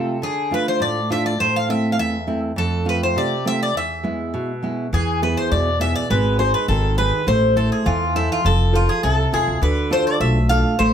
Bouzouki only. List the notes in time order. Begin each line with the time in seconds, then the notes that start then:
Already playing: A4
0.23 G#4
0.54 B4
0.68 C5
0.82 D5
1.12 E5
1.26 D5
1.40 C5
1.56 F5
1.70 E5
1.92 F5
1.99 E5
2.58 A4
2.89 B4
3.03 C5
3.18 D5
3.47 E5
3.63 D5
3.77 E5
4.94 G#4
5.23 B4
5.37 C5
5.52 D5
5.81 E5
5.96 D5
6.11 B4
6.39 C5
6.54 B4
6.68 A4
6.98 B4
7.28 C5
7.57 A4
7.72 G#4
7.86 F4
8.16 E4
8.32 F4
8.46 A4
8.75 F4
8.89 G#4
9.03 A4
9.34 G#4
9.63 B4
9.93 C5
10.07 D5
10.21 E5
10.49 F5
10.79 C5